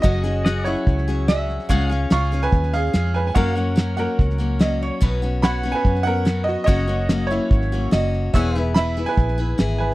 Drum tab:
HH |----p-------p---|----p-------p---|----p-------p---|----p-------p---|
SD |ooo-o-o-ooo-o-oo|ooo-o-ooooo-o-o-|ooo-o-o-ooo-o-o-|ooo-o-o-ooo-o-o-|
BD |o-------o-------|o-------o-------|o-------o-------|o-------o-------|

HH |----p-------p---|----p-------p---|
SD |ooo-o-o-ooo-o-o-|ooo-o-ooooo-o-oo|
BD |o-------o-------|o-------o-------|